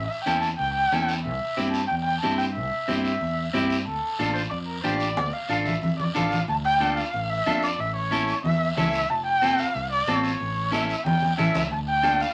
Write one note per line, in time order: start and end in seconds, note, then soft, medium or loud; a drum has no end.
0.07 0.24 E5 medium
0.25 0.53 E2 medium
0.25 0.49 C#4 medium
0.25 0.50 E4 medium
0.25 0.50 A4 medium
0.25 0.41 G5 loud
0.25 high conga medium
0.25 short guiro medium
0.41 0.49 A5 medium
0.41 short guiro medium
0.58 0.86 C#2 medium
0.58 0.73 G5 medium
0.58 high conga soft
0.58 long guiro medium
0.74 1.05 G5 medium
0.92 1.27 E2 medium
0.92 1.15 C#4 medium
0.92 1.15 E4 soft
0.92 1.16 A4 medium
0.92 high conga medium
0.92 short guiro medium
1.08 short guiro medium
1.23 1.38 C2 medium
1.23 1.70 E5 medium
1.23 high conga soft
1.23 long guiro medium
1.57 1.84 G2 medium
1.57 1.80 C4 medium
1.57 1.80 E4 soft
1.57 1.80 G4 medium
1.57 high conga medium
1.57 short guiro medium
1.72 1.87 A5 medium
1.72 short guiro medium
1.87 2.17 E2 medium
1.87 1.95 G5 loud
1.87 high conga soft
1.87 long guiro medium
2.04 2.20 G5 medium
2.21 2.58 G2 medium
2.21 2.46 C4 medium
2.21 2.46 E4 medium
2.21 2.46 G4 medium
2.21 2.37 A5 medium
2.21 high conga medium
2.21 short guiro medium
2.38 2.45 G5 medium
2.38 short guiro medium
2.54 2.69 C2 medium
2.54 3.00 E5 medium
2.54 high conga soft
2.54 long guiro medium
2.88 3.15 G2 medium
2.88 3.11 C4 medium
2.88 3.11 E4 soft
2.88 3.11 G4 medium
2.88 high conga medium
2.88 short guiro medium
3.03 3.65 E5 medium
3.03 short guiro medium
3.21 3.47 E2 medium
3.21 high conga soft
3.21 long guiro medium
3.53 3.86 G2 medium
3.53 3.77 C4 medium
3.53 3.77 E4 medium
3.53 3.77 G4 medium
3.53 high conga medium
3.53 short guiro medium
3.70 short guiro medium
3.85 4.00 D2 loud
3.85 4.31 A4 medium
3.85 high conga soft
3.85 long guiro medium
4.19 4.45 A1 medium
4.19 4.42 D4 medium
4.19 4.42 F4 medium
4.19 4.42 A4 medium
4.19 high conga medium
4.19 short guiro medium
4.34 4.42 C5 medium
4.34 short guiro medium
4.50 4.78 F2 medium
4.50 4.58 D5 medium
4.50 high conga soft
4.50 long guiro medium
4.67 4.83 A#4 medium
4.83 5.17 A1 medium
4.83 5.07 D4 medium
4.83 5.07 F4 medium
4.83 5.08 G4 medium
4.83 4.99 C5 medium
4.83 high conga medium
4.83 short guiro medium
4.99 5.34 D5 medium
4.99 short guiro medium
5.16 5.30 D2 medium
5.16 high conga medium
5.16 long guiro medium
5.33 5.49 F5 medium
5.49 5.76 A1 medium
5.49 5.73 D4 medium
5.49 5.73 F4 medium
5.49 5.73 A4 medium
5.49 5.57 F5 medium
5.49 short guiro medium
5.66 5.81 E5 medium
5.66 low conga medium
5.66 short guiro medium
5.82 6.09 F2 medium
5.82 5.98 E5 medium
5.82 low conga medium
5.82 long guiro medium
5.99 6.14 D5 medium
5.99 low conga medium
6.15 6.42 A1 medium
6.15 6.38 D4 medium
6.15 6.38 F4 medium
6.15 6.39 A4 medium
6.15 6.46 F5 medium
6.15 low conga medium
6.15 short guiro medium
6.31 low conga medium
6.31 short guiro medium
6.48 7.00 D2 medium
6.48 6.56 A5 loud
6.48 high conga soft
6.48 long guiro medium
6.65 6.95 G5 loud
6.80 7.03 D4 medium
6.80 7.04 F4 medium
6.80 7.04 A4 medium
6.80 high conga medium
6.80 short guiro medium
6.97 7.31 F5 medium
6.97 short guiro medium
7.13 7.40 A1 medium
7.13 high conga soft
7.13 long guiro medium
7.30 7.65 E5 loud
7.46 7.72 F2 medium
7.46 7.69 D4 medium
7.46 7.69 F4 medium
7.46 7.70 A4 medium
7.46 high conga medium
7.46 short guiro medium
7.63 7.81 D5 medium
7.63 short guiro medium
7.78 8.31 A1 medium
7.78 7.96 E5 loud
7.78 high conga soft
7.78 long guiro medium
7.96 8.41 C#5 medium
8.11 8.34 C#4 medium
8.11 8.35 E4 medium
8.11 8.35 A4 medium
8.11 high conga medium
8.11 short guiro medium
8.28 short guiro medium
8.44 8.70 E2 medium
8.44 8.76 E5 loud
8.44 high conga soft
8.44 low conga medium
8.44 long guiro medium
8.77 9.03 C#2 medium
8.77 9.00 C#4 medium
8.77 9.00 E4 medium
8.77 9.00 A4 medium
8.77 9.11 E5 loud
8.77 high conga medium
8.77 low conga medium
8.77 short guiro medium
8.93 short guiro medium
9.10 9.62 F1 medium
9.10 9.26 A5 medium
9.10 high conga soft
9.10 long guiro medium
9.27 9.61 G5 loud
9.42 9.65 C4 medium
9.42 9.65 F4 medium
9.42 9.65 A4 medium
9.42 high conga medium
9.42 short guiro medium
9.58 9.92 F5 loud
9.58 short guiro medium
9.74 10.01 C2 medium
9.74 high conga soft
9.74 long guiro medium
9.92 10.22 D5 medium
10.07 10.33 A1 medium
10.07 10.31 C4 medium
10.07 10.31 F4 medium
10.07 10.31 A4 medium
10.07 high conga medium
10.07 short guiro medium
10.24 10.75 C#5 medium
10.24 short guiro medium
10.40 10.92 A1 medium
10.40 high conga soft
10.40 long guiro medium
10.72 10.95 C#4 medium
10.72 10.95 E4 medium
10.72 10.95 A4 medium
10.72 11.06 E5 medium
10.72 high conga medium
10.72 short guiro medium
10.89 short guiro medium
11.05 11.31 E2 medium
11.05 11.37 G5 medium
11.05 low conga medium
11.05 long guiro medium
11.22 low conga medium
11.38 11.53 A1 medium
11.38 11.61 C#4 medium
11.38 11.61 E4 medium
11.38 11.61 A4 medium
11.38 11.70 E5 medium
11.38 low conga loud
11.38 short guiro medium
11.54 11.69 C#2 medium
11.54 low conga medium
11.54 short guiro medium
11.70 12.23 D2 medium
11.70 11.79 A5 medium
11.70 high conga soft
11.70 long guiro medium
11.89 12.23 G5 loud
12.03 12.26 D4 medium
12.03 12.26 F4 medium
12.03 12.26 A4 medium
12.03 high conga medium
12.03 short guiro medium
12.20 12.34 F5 medium
12.20 short guiro medium